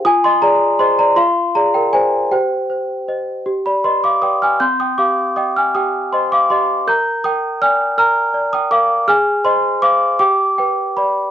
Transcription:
\new Staff \with { instrumentName = "Celesta" } { \time 6/8 \key c \minor \tempo 4. = 53 << { <aes'' ees'''>16 <ees'' c'''>16 <d'' bes''>8 <ees'' c'''>16 <d'' bes''>16 <f'' c'''>8 <d'' bes''>16 <bes' g''>16 <c'' aes''>8 | <c'' g''>4.~ <c'' g''>16 <d'' b''>16 <ees'' c'''>16 <f'' d'''>16 <g'' ees'''>16 <aes'' f'''>16 | <c''' g'''>16 <g'' ees'''>16 <f'' d'''>8 <g'' ees'''>16 <aes'' f'''>16 <g'' ees'''>8 <ees'' c'''>16 <f'' d'''>16 <ees'' c'''>8 | <bes'' g'''>8 <g'' ees'''>8 <aes'' f'''>8 <bes'' f'''>8. <g'' ees'''>16 <f'' d'''>8 |
<aes'' f'''>8 <ees'' c'''>8 <f'' d'''>8 <g'' d'''>8 <b' g''>8 <d'' b''>8 | } \\ { f'8 aes'8 <aes' c''>8 f'8 aes'8 <aes' d''>8 | g'8 c''8 <c'' ees''>8 g'8 b'8 <b' d''>8 | c'8 g'8 ees''8 g'8 c''8 g'8 | bes'8 bes'8 d''8 bes'8 d''8 bes'8 |
aes'8 c''8 c''8 g'4 b'8 | } >> }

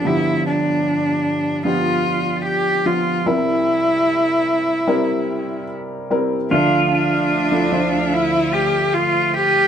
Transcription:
<<
  \new Staff \with { instrumentName = "Pedal steel guitar" } { \time 4/4 \key c \mixolydian \tempo 4 = 75 r1 | r1 | \key d \minor f'1 | }
  \new Staff \with { instrumentName = "Cello" } { \time 4/4 \key c \mixolydian e'8 d'4. f'4 g'8 f'8 | e'2. r4 | \key d \minor d'8 d'4. e'8 g'8 f'8 g'8 | }
  \new Staff \with { instrumentName = "Felt piano" } { \time 4/4 \key c \mixolydian <f b d' g'>4~ <f b d' g'>16 r8. <f b d' g'>4 r8 <f b d' f'>16 r16 | <g c' e' bes'>4~ <g c' e' bes'>16 r8. <g c' e' bes'>4 r8 <g c' e' bes'>16 r16 | \key d \minor <f d' a' e''>8. r8 <f d' e' a'>16 <f d' c'' e''>4~ <f d' c'' e''>16 r4 r16 | }
  \new Staff \with { instrumentName = "Felt piano" } { \clef bass \time 4/4 \key c \mixolydian <g,, g,>1 | <c, c>1 | \key d \minor <d, d>1 | }
  \new Staff \with { instrumentName = "String section" } { \clef bass \time 4/4 \key c \mixolydian r1 | r1 | \key d \minor <d, d f e''>1 | }
>>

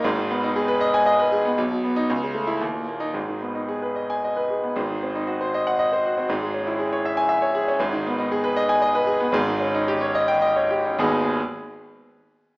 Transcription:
\new Staff \with { instrumentName = "Grand piano" } { \time 3/4 \key gis \minor \tempo 4 = 116 << { r4. r16 gis''8 r8. | r8. dis'16 r8. e'16 r8. dis'16 | r4. r16 gis''8 r8. | r4. r16 fis''8 r8. |
r4. r16 gis''8 r8. | r4. r16 gis''8 r8. | r4. r16 g''8 r8. | <gis,, dis, gis b dis' gis'>8 r2 r8 | } \\ { <gis,, gis,>16 dis16 b16 dis'16 gis'16 b'16 dis''8 dis''16 b'16 gis'16 b16 | b,,16 b,16 b8 cis,16 cis16 a8 dis,16 ais,16 ais8 | <gis,, gis,>16 dis16 b16 dis'16 gis'16 b'16 dis''8 dis''16 b'16 gis'16 b16 | <gis,, gis,>16 dis16 bis16 dis'16 fis'16 bis'16 dis''8 dis''16 bis'16 fis'16 bis16 |
<gis,, gis,>16 gis16 cis'16 e'16 gis'16 cis''16 e''8 e''16 cis''16 gis'16 cis'16 | <gis,, gis,>16 dis16 b16 dis'16 gis'16 b'16 dis''8 dis''16 b'16 gis'16 b16 | <gis,, gis,>16 dis16 cis'16 dis'16 g'16 cis''16 dis''8 dis''16 cis''16 g'16 cis'16 | r2. | } >> }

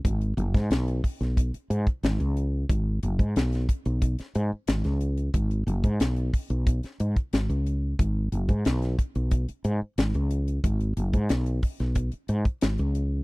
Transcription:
<<
  \new Staff \with { instrumentName = "Fretless electric bass" } { \clef bass \time 4/4 \key gis \minor \tempo 4 = 91 gis,,8 fis,,16 gis,16 b,,8 r16 b,,8 r16 gis,16 r16 gis,,16 cis,8. | gis,,8 fis,,16 gis,16 b,,8 r16 b,,8 r16 gis,16 r16 gis,,16 cis,8. | gis,,8 fis,,16 gis,16 b,,8 r16 b,,8 r16 gis,16 r16 gis,,16 cis,8. | gis,,8 fis,,16 gis,16 b,,8 r16 b,,8 r16 gis,16 r16 gis,,16 cis,8. |
gis,,8 fis,,16 gis,16 b,,8 r16 b,,8 r16 gis,16 r16 gis,,16 cis,8. | }
  \new DrumStaff \with { instrumentName = "Drums" } \drummode { \time 4/4 <hh bd>16 hh16 hh16 <hh bd sn>16 <hh sn>16 hh16 <hho bd>16 <hh sn>16 <hh bd>16 hh16 hh16 <hh bd>16 <hh sn>16 hh16 hh8 | <hh bd>8 hh16 <hh bd>16 <hh sn>16 <hh sn>16 <hh bd>16 hh16 <hh bd>16 <hh sn>16 hh8 <hh sn>16 <hh sn>16 hh16 hh16 | <hh bd>16 hh16 hh16 <hh bd>16 <hh sn>16 hh16 <hho bd>16 hh16 <hh bd>16 <hh sn>16 hh16 <hh bd>16 <hh sn>16 hh16 hh8 | <hh bd>8 hh16 <hh bd>16 <hh sn>16 <hh sn>16 <hh bd>16 hh16 <hh bd>16 hh16 hh8 <hh sn>16 hh16 hh16 hh16 |
<hh bd>16 hh16 hh16 <hh bd>16 <hh sn>16 hh16 <hho bd>16 <hh sn>16 <hh bd>16 hh16 hh16 <hh bd>16 <hh sn>16 hh16 hh8 | }
>>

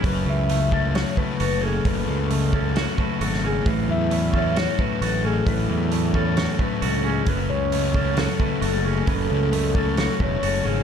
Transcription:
<<
  \new Staff \with { instrumentName = "Soft synth lead" } { \time 4/4 \key fis \minor \tempo 4 = 133 r8 e''4. cis''8 b'4 a'8~ | a'8 a'2 r4. | r8 e''4. cis''8 b'4 a'8~ | a'8 a'2 r4. |
r8 cis''4. a'2 | a'2~ a'8 cis''4. | }
  \new Staff \with { instrumentName = "Clean electric guitar" } { \time 4/4 \key fis \minor b'4 r8 a'8 cis''8 b'8 a'8 gis'8 | b'4 r8 a'8 cis''8 b'8 a'8 gis'8 | b'4 r8 a'8 cis''8 b'8 a'8 gis'8 | b'4 r8 a'8 cis''8 b'8 a'8 gis'8 |
b'4 r8 a'8 cis''8 b'8 a'8 gis'8 | b'4 r8 a'8 cis''8 b'8 a'8 gis'8 | }
  \new Staff \with { instrumentName = "Clean electric guitar" } { \time 4/4 \key fis \minor fis,8 cis8 a8 cis'8 fis'8 a8 fis'8 cis'8 | fis,8 cis8 a8 cis'8 fis'8 a8 fis'8 cis'8 | a,8 e8 a8 cis'8 fis'8 a8 fis'8 cis'8 | a,8 e8 a8 cis'8 fis'8 a8 fis'8 cis'8 |
fis,8 cis8 a8 cis'8 fis'8 a8 fis'8 cis'8 | fis,8 cis8 a8 cis'8 fis'8 a8 fis'8 cis'8 | }
  \new Staff \with { instrumentName = "Distorted electric guitar" } { \clef bass \time 4/4 \key fis \minor fis,8 cis8 cis8 a8 fis8 cis8 fis8 cis8 | fis,8 cis8 cis8 a8 fis8 cis8 fis8 cis8 | a,8 fis8 a,8 cis'8 fis8 a,8 fis8 a,8 | a,8 fis8 a,8 cis'8 fis8 a,8 fis8 a,8 |
fis,8 cis8 cis8 a8 fis8 cis8 fis8 cis8 | fis,8 cis8 cis8 a8 fis8 cis8 fis8 cis8 | }
  \new Staff \with { instrumentName = "Fingered electric bass" } { \clef bass \time 4/4 \key fis \minor fis,,8 cis,2 r8 fis,,4 | fis,,8 cis,2 r8 gis,,4 | a,,8 e,2 r8 a,,4 | a,,8 e,2 r8 cis,4 |
fis,,8 cis,2 r8 fis,,4 | fis,,8 cis,2 e,,8 fis,,8 gis,,8 | }
  \new DrumStaff \with { instrumentName = "Drums" } \drummode { \time 4/4 <hho bd>4 hho8 bd8 <hho sn>8 bd8 hho4 | <hho bd>4 hho8 bd8 <hho sn>8 bd8 hho16 sn8. | <hho bd>4 hho8 bd8 <hho sn>8 bd8 hho4 | <hho bd>4 hho8 bd8 <hho sn>8 bd8 hho4 |
<hho bd>4 hho8 bd8 <hho sn>8 bd8 hho4 | <hho bd>4 hho8 bd8 <hho sn>8 bd8 hho4 | }
>>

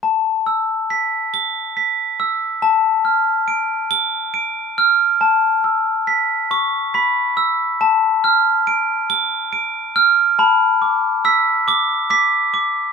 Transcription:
\new Staff \with { instrumentName = "Glockenspiel" } { \time 6/8 \key d \lydian \tempo 4. = 46 << { a''8 e'''8 b'''8 a''''8 b'''8 e'''8 | a''8 f'''8 d''''8 a''''8 d''''8 f'''8 | a''8 e'''8 b'''8 a''''8 b'''8 e'''8 | a''8 f'''8 d''''8 a''''8 d''''8 f'''8 |
a''8 d'''8 b'''8 a''''8 b'''8 d'''8 | } \\ { r2. | r2. | r4. cis'''8 b''4 | r2. |
b''4 e'''8 d'''8 d'''4 | } >> }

